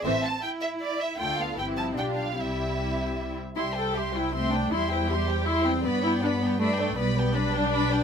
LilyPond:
<<
  \new Staff \with { instrumentName = "Violin section" } { \time 3/4 \key c \major \tempo 4 = 159 e''8 a''8 g''8 e''8 d''8 e''8 | g''8 f''8 g''8 a''8 g''8 f''8 | e''2~ e''8 r8 | c'''8 g''8 c'''8 g''8 c'''8 g''8 |
c'''8 g''8 c'''8 g''8 c'''8 g''8 | b''8 g''8 b''8 g''8 b''8 g''8 | b''8 g''8 b''8 g''8 b''8 g''8 | }
  \new Staff \with { instrumentName = "Violin section" } { \time 3/4 \key c \major <c' c''>8 r2 r8 | <f' a'>4 <e' g'>4 <f' g'>4 | <e' g'>2~ <e' g'>8 r8 | <g' e''>8 <c'' g''>8 <g' e''>8 <c'' g''>8 <g' e''>8 <c'' g''>8 |
<g' e''>8 <c'' g''>8 <g' e''>8 <c'' g''>8 <g' e''>8 <c'' g''>8 | <b' d''>8 <b' d''>8 <b' d''>8 <b' d''>8 <b' d''>8 <b' d''>8 | <b' d''>8 <b' d''>8 <b' d''>8 <b' d''>8 <b' d''>8 <b' d''>8 | }
  \new Staff \with { instrumentName = "Cello section" } { \time 3/4 \key c \major c'4 e'2 | f'4 e'4 d'4 | e'2~ e'8 r8 | g2 a4 |
g2. | b2 d'4 | g2. | }
  \new Staff \with { instrumentName = "Viola section" } { \time 3/4 \key c \major << { a8 r2 r8 | a8 b8 c'4 d'4 | c'2~ c'8 r8 | e'8 a'8 g'8 e'8 c'8 d'8 |
e'8 e'8 g'4 e'8 c'8 | b8 e'8 d'8 b8 a8 a8 | b8 b8 d'2 | } \\ { e8 r2 r8 | d4 e8 f8 g4 | g2~ g8 r8 | r2. |
r2. | r2. | r2. | } >> }
  \new Staff \with { instrumentName = "Double bass section" } { \clef bass \time 3/4 \key c \major a,,4 r2 | d,4 g,,4 b,,4 | c,2~ c,8 r8 | c,2. |
e,2. | g,2. | b,,2. | }
>>